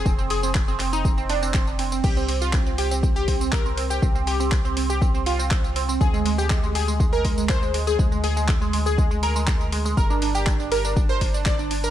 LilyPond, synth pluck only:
\new Staff \with { instrumentName = "Synth pluck" } { \time 4/4 \key bes \mixolydian \tempo 4 = 121 c'16 c'16 aes'16 c'16 r16 c'16 c'16 ees'16 c'16 c'16 d'16 c'16 c'16 r16 c'16 c'16 | g'16 c'16 c'16 f'16 c'16 c'16 g'16 c'16 c'16 g'16 c'16 c'16 bes'16 c'16 c'16 g'16 | c'16 c'16 g'16 c'16 r16 c'16 c'16 g'16 c'16 c'16 f'16 c'16 c'16 r16 c'16 c'16 | aes'16 aes16 aes16 g'16 aes16 aes16 aes'16 aes16 aes16 bes'16 aes16 aes16 c''16 aes16 aes16 aes'16 |
aes16 aes16 aes'16 aes16 r16 aes16 aes16 aes'16 aes16 aes16 bes'16 aes16 aes16 r16 aes16 aes16 | bes'16 d'16 d'16 g'16 d'16 d'16 bes'16 d'16 d'16 c''16 d'16 d'16 d''16 d'16 d'16 bes'16 | }